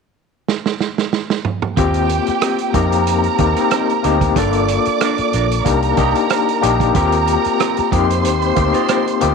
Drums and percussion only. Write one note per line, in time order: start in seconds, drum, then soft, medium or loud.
0.48 snare medium
0.66 snare medium
0.81 snare medium
0.98 snare medium
1.13 snare medium
1.30 snare medium
1.45 mid tom medium
1.62 mid tom medium
1.77 kick medium
1.77 closed hi-hat medium
1.94 closed hi-hat soft
2.09 closed hi-hat medium
2.27 cross-stick soft
2.27 closed hi-hat soft
2.41 cross-stick loud
2.41 closed hi-hat medium
2.59 closed hi-hat soft
2.74 kick medium
2.74 closed hi-hat medium
2.92 closed hi-hat medium
3.07 closed hi-hat medium
3.24 closed hi-hat soft
3.39 kick medium
3.39 closed hi-hat medium
3.57 closed hi-hat soft
3.71 cross-stick medium
3.71 closed hi-hat medium
3.90 closed hi-hat soft
4.04 closed hi-hat medium
4.21 kick medium
4.21 closed hi-hat soft
4.36 kick medium
4.36 closed hi-hat medium
4.53 closed hi-hat soft
4.69 closed hi-hat medium
4.85 closed hi-hat soft
5.01 cross-stick loud
5.01 closed hi-hat medium
5.18 closed hi-hat soft
5.33 closed hi-hat medium
5.52 closed hi-hat medium
5.66 kick medium
5.66 closed hi-hat medium
5.83 closed hi-hat soft
5.97 kick medium
5.97 closed hi-hat medium
6.15 closed hi-hat soft
6.30 cross-stick medium
6.30 closed hi-hat medium
6.49 closed hi-hat soft
6.63 cross-stick soft
6.63 closed hi-hat medium
6.80 kick medium
6.80 closed hi-hat soft
6.95 kick medium
6.95 closed hi-hat medium
7.12 closed hi-hat soft
7.28 closed hi-hat medium
7.45 cross-stick soft
7.45 closed hi-hat soft
7.60 cross-stick loud
7.60 closed hi-hat medium
7.77 closed hi-hat soft
7.92 kick medium
7.92 closed hi-hat medium
8.11 closed hi-hat medium
8.25 closed hi-hat medium
8.42 closed hi-hat soft
8.56 kick medium
8.56 closed hi-hat medium
8.74 closed hi-hat soft
8.88 cross-stick medium
8.88 closed hi-hat medium
9.07 closed hi-hat soft
9.21 closed hi-hat medium